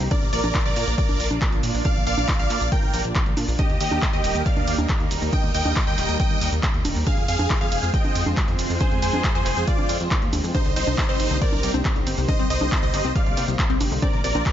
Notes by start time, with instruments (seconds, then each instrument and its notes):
Already playing: analog synth pad A#3
0.00 analog synth bass C2, shaker
0.11 analog synth pad D4 F4 D5, supersaw synth A#4 D5, synth pluck D5, kick, closed hi-hat, high conga, shaker
0.22 analog synth bass A#1, closed hi-hat
0.33 analog synth bass A#1, supersaw synth A#4 D5, synth pluck D5, open hi-hat, shaker
0.44 analog synth bass A#1, closed hi-hat, high conga, shaker
0.55 kick, clap, closed hi-hat, shaker
0.65 analog synth bass A#1, supersaw synth A#4 D5, synth pluck D5, closed hi-hat
0.76 analog synth bass A#2, open hi-hat, shaker
0.87 analog synth bass A#1, closed hi-hat, shaker
0.98 supersaw synth A#4 D5, synth pluck D5, kick, closed hi-hat, shaker
1.09 analog synth bass A#1, closed hi-hat, high conga
1.20 analog synth bass A#1, open hi-hat, shaker
1.31 analog synth bass A#1, high conga, shaker
1.42 kick, clap, closed hi-hat, shaker
1.52 analog synth bass A#1, closed hi-hat
1.63 analog synth bass A#2, open hi-hat, shaker
1.74 analog synth bass A#1, shaker
1.85 supersaw synth D5 F5, synth pluck F5, kick, closed hi-hat, high conga, shaker
1.96 analog synth bass A#1, closed hi-hat
2.07 analog synth bass A#1, supersaw synth D5 F5, synth pluck F5, open hi-hat, shaker
2.18 analog synth bass A#1, closed hi-hat, high conga, shaker
2.28 kick, clap, closed hi-hat, shaker
2.39 analog synth bass A#1, supersaw synth D5 F5, synth pluck F5, closed hi-hat
2.50 analog synth bass A#2, clap, open hi-hat, shaker
2.61 analog synth bass A#1, closed hi-hat, shaker
2.72 supersaw synth A#4 G5, synth pluck G5, kick, closed hi-hat, shaker
2.83 analog synth bass A#1, closed hi-hat
2.94 analog synth bass A#1, open hi-hat, shaker
3.04 analog synth bass A#1, shaker
3.15 kick, clap, closed hi-hat, shaker
3.26 analog synth bass A#1, closed hi-hat
3.37 analog synth bass A#2, open hi-hat, high conga, shaker
3.48 analog synth bass A#1, shaker
3.59 analog synth pad G3 A#3 D#4 A#4, supersaw synth G4 D#5, synth pluck D#5, kick, closed hi-hat, high conga, shaker
3.70 analog synth bass D#2, closed hi-hat
3.81 analog synth bass D#2, supersaw synth G4 D#5, synth pluck D#5, open hi-hat, ride, shaker
3.91 analog synth bass D#2, high conga, shaker
4.02 kick, clap, closed hi-hat, shaker
4.13 analog synth bass D#2, supersaw synth G4 D#5, synth pluck D#5, closed hi-hat
4.24 analog synth bass D#1, open hi-hat, ride, shaker
4.35 analog synth bass D#2, closed hi-hat, shaker
4.46 supersaw synth D5 F5, synth pluck F5, kick, closed hi-hat, shaker
4.57 analog synth bass D#2, closed hi-hat, high conga
4.68 analog synth bass D#2, open hi-hat, ride, shaker
4.78 analog synth bass D#2, closed hi-hat, high conga, shaker
4.89 kick, clap, closed hi-hat, shaker
5.00 analog synth bass D#2, closed hi-hat
5.11 analog synth bass D#1, open hi-hat, ride, shaker
5.22 analog synth bass D#2, shaker
5.33 supersaw synth D#5 G5, synth pluck G5, kick, closed hi-hat, high conga, shaker
5.44 analog synth bass D#2, closed hi-hat
5.54 analog synth bass D#2, supersaw synth D#5 G5, synth pluck G5, open hi-hat, ride, shaker
5.65 analog synth bass D#2, high conga, shaker
5.76 kick, clap, closed hi-hat, shaker
5.87 analog synth bass D#2, supersaw synth D#5 G5, synth pluck G5, closed hi-hat
5.98 analog synth bass D#1, clap, open hi-hat, ride, shaker
6.09 analog synth bass D#2, closed hi-hat, shaker
6.19 supersaw synth D#5 G5, synth pluck G5, kick, closed hi-hat, shaker
6.31 analog synth bass D#2, closed hi-hat
6.41 analog synth bass D#2, open hi-hat, ride, shaker
6.52 analog synth bass D#2, closed hi-hat, shaker
6.63 kick, clap, closed hi-hat, shaker
6.74 analog synth bass D#2, closed hi-hat
6.85 analog synth bass D#1, open hi-hat, ride, high conga, shaker
6.96 analog synth bass D#2, shaker
7.07 analog synth pad G#3 C4 F4 C5, supersaw synth G#4 F5, synth pluck F5, kick, closed hi-hat, high conga, shaker
7.18 analog synth bass F2, closed hi-hat
7.28 analog synth bass F2, supersaw synth G#4 F5, synth pluck F5, open hi-hat, ride, shaker
7.39 analog synth bass F2, closed hi-hat, high conga, shaker
7.50 kick, clap, closed hi-hat, shaker
7.61 analog synth bass F2, supersaw synth G#4 F5, synth pluck F5, closed hi-hat
7.72 analog synth bass F1, open hi-hat, ride, shaker
7.83 analog synth bass F2, shaker
7.94 supersaw synth D#5 G5, synth pluck G5, kick, closed hi-hat, shaker
8.05 analog synth bass F2, closed hi-hat, high conga
8.15 analog synth bass F2, open hi-hat, ride, shaker
8.26 analog synth bass F2, closed hi-hat, high conga, shaker
8.37 kick, clap, closed hi-hat, shaker
8.48 analog synth bass F2, closed hi-hat
8.59 analog synth bass F1, open hi-hat, ride, shaker
8.70 analog synth bass F2, shaker
8.81 supersaw synth G#4 C5, synth pluck C5, kick, closed hi-hat, high conga, shaker
8.91 analog synth bass F2, closed hi-hat
9.02 analog synth bass F2, supersaw synth G#4 C5, synth pluck C5, open hi-hat, ride, shaker
9.13 analog synth bass F2, high conga, shaker
9.24 kick, clap, closed hi-hat, shaker
9.35 analog synth bass F2, supersaw synth G#4 C5, synth pluck C5, closed hi-hat
9.46 analog synth bass F1, clap, open hi-hat, ride, shaker
9.57 analog synth bass F2, closed hi-hat, shaker
9.67 supersaw synth F4 D5, synth pluck D5, kick, closed hi-hat, shaker
9.78 analog synth bass F2, closed hi-hat, high conga
9.89 analog synth bass F2, open hi-hat, ride, shaker
10.00 analog synth bass F2, closed hi-hat, shaker
10.11 kick, clap, closed hi-hat, shaker
10.22 analog synth bass D#2, closed hi-hat
10.33 analog synth bass D#2, open hi-hat, ride, high conga, shaker
10.44 analog synth bass F2, shaker
10.54 synth arpeggio sound C3, analog synth pad A#3 D#4 G4 C5, supersaw synth D#4 C5, synth pluck C5, kick, closed hi-hat, high conga, shaker
10.65 analog synth bass C2, synth arpeggio sound D3, closed hi-hat
10.76 analog synth bass C2, synth arpeggio sound C4, supersaw synth D#4 C5, synth pluck C5, open hi-hat, ride, shaker
10.87 analog synth bass C2, synth arpeggio sound C3, closed hi-hat, high conga, shaker
10.98 synth arpeggio sound C3, kick, clap, closed hi-hat, shaker
11.09 analog synth bass C2, synth arpeggio sound C4, supersaw synth D#4 C5, synth pluck C5, closed hi-hat
11.20 analog synth bass G1, synth arpeggio sound C3, open hi-hat, ride, shaker
11.31 analog synth bass C2, synth arpeggio sound D3, closed hi-hat, shaker
11.42 synth arpeggio sound C4, supersaw synth A#4 D5, synth pluck D5, kick, closed hi-hat, shaker
11.52 analog synth bass C2, synth arpeggio sound C3, closed hi-hat, high conga
11.63 analog synth bass C2, synth arpeggio sound C3, open hi-hat, ride, shaker
11.74 analog synth bass C2, synth arpeggio sound C4, closed hi-hat, high conga, shaker
11.85 synth arpeggio sound C3, kick, clap, closed hi-hat, shaker
11.96 analog synth bass C2, synth arpeggio sound D3, closed hi-hat
12.07 analog synth bass G1, synth arpeggio sound C4, open hi-hat, ride, shaker
12.18 analog synth bass C2, synth arpeggio sound C3, shaker
12.28 synth arpeggio sound C3, supersaw synth C5 D#5, synth pluck D#5, kick, closed hi-hat, high conga, shaker
12.39 analog synth bass C2, synth arpeggio sound C4, closed hi-hat
12.50 analog synth bass C2, synth arpeggio sound C3, supersaw synth C5 D#5, synth pluck D#5, open hi-hat, ride, shaker
12.61 analog synth bass C2, synth arpeggio sound D3, high conga, shaker
12.72 synth arpeggio sound C4, kick, clap, closed hi-hat, shaker
12.83 analog synth bass C2, synth arpeggio sound C3, supersaw synth C5 D#5, synth pluck D#5, closed hi-hat
12.94 analog synth bass G1, synth arpeggio sound C3, clap, open hi-hat, ride, shaker
13.05 analog synth bass C2, synth arpeggio sound C4, closed hi-hat, shaker
13.15 synth arpeggio sound C3, supersaw synth D5 F5, synth pluck F5, kick, closed hi-hat, shaker
13.26 analog synth bass C2, synth arpeggio sound D3, closed hi-hat
13.37 analog synth bass C2, synth arpeggio sound C4, open hi-hat, ride, shaker
13.48 analog synth bass C2, synth arpeggio sound C3, closed hi-hat, shaker
13.59 synth arpeggio sound C3, kick, clap, closed hi-hat, shaker
13.70 analog synth bass C2, synth arpeggio sound C4, closed hi-hat
13.81 analog synth bass G1, synth arpeggio sound C3, open hi-hat, ride, high conga, shaker
13.91 analog synth bass C2, synth arpeggio sound D3, shaker
14.02 synth arpeggio sound C4, analog synth pad D4 F4 D5, supersaw synth A#4 D5, synth pluck D5, kick, closed hi-hat, high conga, shaker
14.13 analog synth bass A#1, synth arpeggio sound C3, closed hi-hat
14.24 analog synth bass A#1, synth arpeggio sound C3, supersaw synth A#4 D5, synth pluck D5, open hi-hat, ride, shaker
14.35 analog synth bass A#1, synth arpeggio sound C4, closed hi-hat, high conga, shaker
14.46 synth arpeggio sound C3, kick, clap, closed hi-hat, shaker